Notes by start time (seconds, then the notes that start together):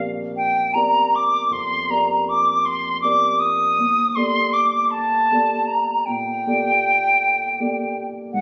Already playing: A#1 C4 G4 A#4 D5 F5
0.37 G5
0.74 C4 G4 A#4 D5 A#5
1.15 D6
1.50 F2 C6
1.89 C4 G4 A#4 D5 A#5
2.28 D6
2.65 C6
3.01 C4 G4 A#4 D5 D6
3.40 D#6
3.78 D#2
4.15 A#3 G4 A4 D5 C6
4.53 D6
4.90 A5
5.31 A#3 G4 A4 D5
5.66 A#5
6.05 A#2 G5
6.47 A#3 G4 A4 D5
7.60 A#3 G4 A4 D5
8.33 G#2 F#5